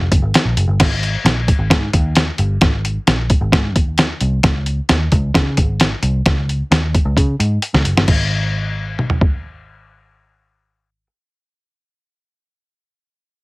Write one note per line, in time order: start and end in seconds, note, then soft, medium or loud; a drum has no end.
0.12 0.20 F#1 medium
0.12 kick medium
0.12 closed hi-hat medium
0.22 0.31 G#1 medium
0.34 snare loud
0.34 closed hi-hat medium
0.45 0.54 A#1 medium
0.57 0.66 F#1 medium
0.57 closed hi-hat medium
0.68 0.77 G1 medium
0.80 1.15 G#1 loud
0.80 kick loud
0.80 snare loud
0.80 closed hi-hat medium
0.80 crash medium
1.03 closed hi-hat medium
1.25 1.51 A#1 medium
1.25 snare loud
1.25 closed hi-hat medium
1.48 kick medium
1.48 closed hi-hat medium
1.59 1.68 G#1 loud
1.70 1.88 G#2 medium
1.70 kick medium
1.70 snare loud
1.70 closed hi-hat medium
1.93 2.29 D#2 medium
1.93 kick medium
1.93 closed hi-hat medium
2.15 snare loud
2.15 closed hi-hat medium
2.38 2.57 G1 medium
2.38 closed hi-hat medium
2.61 2.97 G#1 loud
2.61 kick loud
2.61 snare loud
2.61 closed hi-hat medium
2.85 closed hi-hat medium
3.07 3.34 A#1 medium
3.07 snare loud
3.07 closed hi-hat medium
3.30 kick medium
3.30 closed hi-hat medium
3.41 3.50 G#1 medium
3.52 3.76 G#2 medium
3.52 kick medium
3.52 snare loud
3.52 closed hi-hat medium
3.76 4.11 D#2 medium
3.76 kick medium
3.76 closed hi-hat medium
3.98 snare loud
3.98 closed hi-hat medium
4.21 4.39 C2 medium
4.21 closed hi-hat medium
4.43 4.79 C#2 loud
4.43 kick loud
4.43 snare loud
4.43 closed hi-hat medium
4.66 closed hi-hat medium
4.89 5.07 D#2 medium
4.89 snare loud
4.89 closed hi-hat medium
5.12 5.30 C#2 loud
5.12 kick medium
5.12 closed hi-hat medium
5.34 5.59 C#3 medium
5.34 kick medium
5.34 snare loud
5.34 closed hi-hat medium
5.57 5.93 G#1 medium
5.57 kick medium
5.57 closed hi-hat medium
5.80 snare loud
5.80 closed hi-hat medium
6.03 6.20 C2 medium
6.03 closed hi-hat medium
6.26 6.61 C#2 loud
6.26 kick loud
6.26 snare loud
6.26 closed hi-hat medium
6.49 closed hi-hat medium
6.71 6.98 D#2 medium
6.71 snare loud
6.71 closed hi-hat medium
6.95 kick medium
6.95 closed hi-hat medium
7.05 7.14 C#2 medium
7.17 7.34 C#3 loud
7.17 kick medium
7.17 closed hi-hat medium
7.40 7.57 G#2 medium
7.40 closed hi-hat medium
7.62 closed hi-hat medium
7.74 7.83 C#2 medium
7.74 snare medium
7.85 7.94 F#1 medium
7.85 closed hi-hat medium
7.97 8.05 G1 medium
7.97 snare loud
8.08 11.06 G#1 medium
8.08 kick medium
8.08 crash medium
8.99 mid tom medium
9.10 floor tom medium
9.21 kick medium